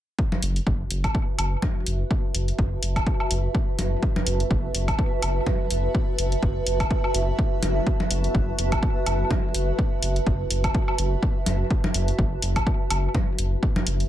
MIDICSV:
0, 0, Header, 1, 4, 480
1, 0, Start_track
1, 0, Key_signature, 3, "minor"
1, 0, Tempo, 480000
1, 186, Time_signature, 4, 2, 24, 8
1, 14087, End_track
2, 0, Start_track
2, 0, Title_t, "Ambient pad"
2, 0, Program_c, 0, 92
2, 185, Note_on_c, 0, 66, 84
2, 263, Note_on_c, 0, 71, 92
2, 463, Note_on_c, 0, 76, 87
2, 1198, Note_on_c, 0, 81, 72
2, 14087, Note_off_c, 0, 66, 0
2, 14087, Note_off_c, 0, 71, 0
2, 14087, Note_off_c, 0, 76, 0
2, 14087, Note_off_c, 0, 81, 0
2, 14087, End_track
3, 0, Start_track
3, 0, Title_t, "Analog synth bass"
3, 0, Program_c, 1, 38
3, 427, Note_on_c, 1, 30, 98
3, 599, Note_off_c, 1, 30, 0
3, 666, Note_on_c, 1, 30, 105
3, 839, Note_off_c, 1, 30, 0
3, 906, Note_on_c, 1, 30, 91
3, 1078, Note_off_c, 1, 30, 0
3, 1385, Note_on_c, 1, 30, 89
3, 1558, Note_off_c, 1, 30, 0
3, 1866, Note_on_c, 1, 30, 77
3, 2038, Note_off_c, 1, 30, 0
3, 2346, Note_on_c, 1, 30, 97
3, 2518, Note_off_c, 1, 30, 0
3, 2586, Note_on_c, 1, 30, 104
3, 2758, Note_off_c, 1, 30, 0
3, 2825, Note_on_c, 1, 30, 96
3, 2998, Note_off_c, 1, 30, 0
3, 3306, Note_on_c, 1, 30, 89
3, 3478, Note_off_c, 1, 30, 0
3, 3785, Note_on_c, 1, 30, 82
3, 3958, Note_off_c, 1, 30, 0
3, 4266, Note_on_c, 1, 30, 94
3, 4439, Note_off_c, 1, 30, 0
3, 4506, Note_on_c, 1, 30, 110
3, 4679, Note_off_c, 1, 30, 0
3, 4746, Note_on_c, 1, 30, 94
3, 4919, Note_off_c, 1, 30, 0
3, 5227, Note_on_c, 1, 30, 89
3, 5399, Note_off_c, 1, 30, 0
3, 5706, Note_on_c, 1, 30, 79
3, 5879, Note_off_c, 1, 30, 0
3, 6186, Note_on_c, 1, 30, 95
3, 6358, Note_off_c, 1, 30, 0
3, 6427, Note_on_c, 1, 30, 109
3, 6599, Note_off_c, 1, 30, 0
3, 6666, Note_on_c, 1, 30, 90
3, 6838, Note_off_c, 1, 30, 0
3, 7145, Note_on_c, 1, 30, 102
3, 7318, Note_off_c, 1, 30, 0
3, 7626, Note_on_c, 1, 30, 100
3, 7798, Note_off_c, 1, 30, 0
3, 8107, Note_on_c, 1, 30, 93
3, 8279, Note_off_c, 1, 30, 0
3, 8347, Note_on_c, 1, 30, 108
3, 8519, Note_off_c, 1, 30, 0
3, 8586, Note_on_c, 1, 30, 91
3, 8758, Note_off_c, 1, 30, 0
3, 9065, Note_on_c, 1, 30, 89
3, 9238, Note_off_c, 1, 30, 0
3, 9545, Note_on_c, 1, 30, 80
3, 9718, Note_off_c, 1, 30, 0
3, 10026, Note_on_c, 1, 30, 98
3, 10198, Note_off_c, 1, 30, 0
3, 10266, Note_on_c, 1, 30, 109
3, 10438, Note_off_c, 1, 30, 0
3, 10505, Note_on_c, 1, 30, 93
3, 10678, Note_off_c, 1, 30, 0
3, 10986, Note_on_c, 1, 30, 91
3, 11158, Note_off_c, 1, 30, 0
3, 11465, Note_on_c, 1, 30, 76
3, 11638, Note_off_c, 1, 30, 0
3, 11945, Note_on_c, 1, 30, 99
3, 12118, Note_off_c, 1, 30, 0
3, 12186, Note_on_c, 1, 30, 106
3, 12358, Note_off_c, 1, 30, 0
3, 12425, Note_on_c, 1, 30, 99
3, 12598, Note_off_c, 1, 30, 0
3, 12906, Note_on_c, 1, 30, 95
3, 13078, Note_off_c, 1, 30, 0
3, 13387, Note_on_c, 1, 30, 77
3, 13559, Note_off_c, 1, 30, 0
3, 13867, Note_on_c, 1, 30, 96
3, 14039, Note_off_c, 1, 30, 0
3, 14087, End_track
4, 0, Start_track
4, 0, Title_t, "Drums"
4, 186, Note_on_c, 9, 36, 111
4, 286, Note_off_c, 9, 36, 0
4, 321, Note_on_c, 9, 64, 87
4, 421, Note_off_c, 9, 64, 0
4, 425, Note_on_c, 9, 46, 90
4, 525, Note_off_c, 9, 46, 0
4, 561, Note_on_c, 9, 46, 37
4, 661, Note_off_c, 9, 46, 0
4, 666, Note_on_c, 9, 36, 115
4, 766, Note_off_c, 9, 36, 0
4, 905, Note_on_c, 9, 46, 91
4, 1005, Note_off_c, 9, 46, 0
4, 1041, Note_on_c, 9, 77, 76
4, 1042, Note_on_c, 9, 36, 62
4, 1042, Note_on_c, 9, 46, 35
4, 1141, Note_off_c, 9, 77, 0
4, 1142, Note_off_c, 9, 36, 0
4, 1142, Note_off_c, 9, 46, 0
4, 1146, Note_on_c, 9, 36, 108
4, 1246, Note_off_c, 9, 36, 0
4, 1385, Note_on_c, 9, 77, 71
4, 1386, Note_on_c, 9, 46, 90
4, 1485, Note_off_c, 9, 77, 0
4, 1486, Note_off_c, 9, 46, 0
4, 1624, Note_on_c, 9, 64, 96
4, 1626, Note_on_c, 9, 36, 118
4, 1724, Note_off_c, 9, 64, 0
4, 1726, Note_off_c, 9, 36, 0
4, 1865, Note_on_c, 9, 46, 89
4, 1965, Note_off_c, 9, 46, 0
4, 2106, Note_on_c, 9, 36, 123
4, 2206, Note_off_c, 9, 36, 0
4, 2346, Note_on_c, 9, 46, 96
4, 2446, Note_off_c, 9, 46, 0
4, 2482, Note_on_c, 9, 46, 37
4, 2582, Note_off_c, 9, 46, 0
4, 2586, Note_on_c, 9, 36, 116
4, 2686, Note_off_c, 9, 36, 0
4, 2826, Note_on_c, 9, 46, 93
4, 2926, Note_off_c, 9, 46, 0
4, 2961, Note_on_c, 9, 36, 63
4, 2961, Note_on_c, 9, 77, 81
4, 2962, Note_on_c, 9, 46, 36
4, 3061, Note_off_c, 9, 36, 0
4, 3061, Note_off_c, 9, 77, 0
4, 3062, Note_off_c, 9, 46, 0
4, 3066, Note_on_c, 9, 36, 112
4, 3166, Note_off_c, 9, 36, 0
4, 3202, Note_on_c, 9, 77, 57
4, 3302, Note_off_c, 9, 77, 0
4, 3307, Note_on_c, 9, 46, 92
4, 3407, Note_off_c, 9, 46, 0
4, 3546, Note_on_c, 9, 36, 123
4, 3646, Note_off_c, 9, 36, 0
4, 3786, Note_on_c, 9, 46, 90
4, 3786, Note_on_c, 9, 64, 94
4, 3886, Note_off_c, 9, 46, 0
4, 3886, Note_off_c, 9, 64, 0
4, 4026, Note_on_c, 9, 36, 118
4, 4126, Note_off_c, 9, 36, 0
4, 4162, Note_on_c, 9, 64, 86
4, 4262, Note_off_c, 9, 64, 0
4, 4265, Note_on_c, 9, 46, 96
4, 4365, Note_off_c, 9, 46, 0
4, 4402, Note_on_c, 9, 46, 38
4, 4502, Note_off_c, 9, 46, 0
4, 4506, Note_on_c, 9, 36, 121
4, 4606, Note_off_c, 9, 36, 0
4, 4746, Note_on_c, 9, 46, 98
4, 4846, Note_off_c, 9, 46, 0
4, 4880, Note_on_c, 9, 77, 81
4, 4882, Note_on_c, 9, 36, 65
4, 4882, Note_on_c, 9, 46, 37
4, 4980, Note_off_c, 9, 77, 0
4, 4982, Note_off_c, 9, 36, 0
4, 4982, Note_off_c, 9, 46, 0
4, 4986, Note_on_c, 9, 36, 114
4, 5086, Note_off_c, 9, 36, 0
4, 5225, Note_on_c, 9, 46, 99
4, 5225, Note_on_c, 9, 77, 79
4, 5325, Note_off_c, 9, 46, 0
4, 5325, Note_off_c, 9, 77, 0
4, 5465, Note_on_c, 9, 64, 92
4, 5466, Note_on_c, 9, 36, 123
4, 5565, Note_off_c, 9, 64, 0
4, 5566, Note_off_c, 9, 36, 0
4, 5705, Note_on_c, 9, 46, 94
4, 5805, Note_off_c, 9, 46, 0
4, 5946, Note_on_c, 9, 36, 120
4, 6046, Note_off_c, 9, 36, 0
4, 6185, Note_on_c, 9, 46, 96
4, 6285, Note_off_c, 9, 46, 0
4, 6321, Note_on_c, 9, 46, 39
4, 6421, Note_off_c, 9, 46, 0
4, 6426, Note_on_c, 9, 36, 114
4, 6526, Note_off_c, 9, 36, 0
4, 6665, Note_on_c, 9, 46, 92
4, 6765, Note_off_c, 9, 46, 0
4, 6801, Note_on_c, 9, 46, 38
4, 6802, Note_on_c, 9, 36, 62
4, 6802, Note_on_c, 9, 77, 80
4, 6901, Note_off_c, 9, 36, 0
4, 6901, Note_off_c, 9, 46, 0
4, 6902, Note_off_c, 9, 77, 0
4, 6906, Note_on_c, 9, 36, 114
4, 7006, Note_off_c, 9, 36, 0
4, 7042, Note_on_c, 9, 77, 56
4, 7142, Note_off_c, 9, 77, 0
4, 7145, Note_on_c, 9, 46, 92
4, 7245, Note_off_c, 9, 46, 0
4, 7386, Note_on_c, 9, 36, 124
4, 7486, Note_off_c, 9, 36, 0
4, 7626, Note_on_c, 9, 46, 93
4, 7626, Note_on_c, 9, 64, 90
4, 7726, Note_off_c, 9, 46, 0
4, 7726, Note_off_c, 9, 64, 0
4, 7866, Note_on_c, 9, 36, 118
4, 7966, Note_off_c, 9, 36, 0
4, 8001, Note_on_c, 9, 64, 78
4, 8101, Note_off_c, 9, 64, 0
4, 8106, Note_on_c, 9, 46, 91
4, 8206, Note_off_c, 9, 46, 0
4, 8242, Note_on_c, 9, 46, 37
4, 8342, Note_off_c, 9, 46, 0
4, 8346, Note_on_c, 9, 36, 113
4, 8446, Note_off_c, 9, 36, 0
4, 8586, Note_on_c, 9, 46, 94
4, 8686, Note_off_c, 9, 46, 0
4, 8721, Note_on_c, 9, 46, 36
4, 8721, Note_on_c, 9, 77, 78
4, 8722, Note_on_c, 9, 36, 61
4, 8821, Note_off_c, 9, 46, 0
4, 8821, Note_off_c, 9, 77, 0
4, 8822, Note_off_c, 9, 36, 0
4, 8826, Note_on_c, 9, 36, 112
4, 8926, Note_off_c, 9, 36, 0
4, 9065, Note_on_c, 9, 46, 97
4, 9065, Note_on_c, 9, 77, 75
4, 9165, Note_off_c, 9, 46, 0
4, 9165, Note_off_c, 9, 77, 0
4, 9306, Note_on_c, 9, 36, 115
4, 9306, Note_on_c, 9, 64, 87
4, 9406, Note_off_c, 9, 36, 0
4, 9406, Note_off_c, 9, 64, 0
4, 9545, Note_on_c, 9, 46, 96
4, 9645, Note_off_c, 9, 46, 0
4, 9786, Note_on_c, 9, 36, 110
4, 9886, Note_off_c, 9, 36, 0
4, 10025, Note_on_c, 9, 46, 93
4, 10125, Note_off_c, 9, 46, 0
4, 10162, Note_on_c, 9, 46, 35
4, 10262, Note_off_c, 9, 46, 0
4, 10266, Note_on_c, 9, 36, 106
4, 10366, Note_off_c, 9, 36, 0
4, 10505, Note_on_c, 9, 46, 91
4, 10605, Note_off_c, 9, 46, 0
4, 10641, Note_on_c, 9, 36, 57
4, 10641, Note_on_c, 9, 46, 35
4, 10641, Note_on_c, 9, 77, 76
4, 10741, Note_off_c, 9, 36, 0
4, 10741, Note_off_c, 9, 46, 0
4, 10741, Note_off_c, 9, 77, 0
4, 10746, Note_on_c, 9, 36, 111
4, 10846, Note_off_c, 9, 36, 0
4, 10881, Note_on_c, 9, 77, 52
4, 10981, Note_off_c, 9, 77, 0
4, 10985, Note_on_c, 9, 46, 90
4, 11085, Note_off_c, 9, 46, 0
4, 11226, Note_on_c, 9, 36, 110
4, 11326, Note_off_c, 9, 36, 0
4, 11463, Note_on_c, 9, 64, 85
4, 11464, Note_on_c, 9, 46, 91
4, 11563, Note_off_c, 9, 64, 0
4, 11564, Note_off_c, 9, 46, 0
4, 11705, Note_on_c, 9, 36, 112
4, 11805, Note_off_c, 9, 36, 0
4, 11841, Note_on_c, 9, 64, 86
4, 11941, Note_off_c, 9, 64, 0
4, 11944, Note_on_c, 9, 46, 89
4, 12044, Note_off_c, 9, 46, 0
4, 12081, Note_on_c, 9, 46, 35
4, 12181, Note_off_c, 9, 46, 0
4, 12186, Note_on_c, 9, 36, 111
4, 12285, Note_off_c, 9, 36, 0
4, 12424, Note_on_c, 9, 46, 90
4, 12524, Note_off_c, 9, 46, 0
4, 12560, Note_on_c, 9, 46, 35
4, 12561, Note_on_c, 9, 36, 59
4, 12561, Note_on_c, 9, 77, 74
4, 12660, Note_off_c, 9, 46, 0
4, 12661, Note_off_c, 9, 36, 0
4, 12661, Note_off_c, 9, 77, 0
4, 12666, Note_on_c, 9, 36, 112
4, 12766, Note_off_c, 9, 36, 0
4, 12905, Note_on_c, 9, 46, 95
4, 12905, Note_on_c, 9, 77, 76
4, 13005, Note_off_c, 9, 46, 0
4, 13005, Note_off_c, 9, 77, 0
4, 13146, Note_on_c, 9, 36, 113
4, 13146, Note_on_c, 9, 64, 91
4, 13246, Note_off_c, 9, 36, 0
4, 13246, Note_off_c, 9, 64, 0
4, 13385, Note_on_c, 9, 46, 90
4, 13485, Note_off_c, 9, 46, 0
4, 13626, Note_on_c, 9, 36, 110
4, 13726, Note_off_c, 9, 36, 0
4, 13761, Note_on_c, 9, 64, 90
4, 13861, Note_off_c, 9, 64, 0
4, 13866, Note_on_c, 9, 46, 93
4, 13966, Note_off_c, 9, 46, 0
4, 14001, Note_on_c, 9, 46, 36
4, 14087, Note_off_c, 9, 46, 0
4, 14087, End_track
0, 0, End_of_file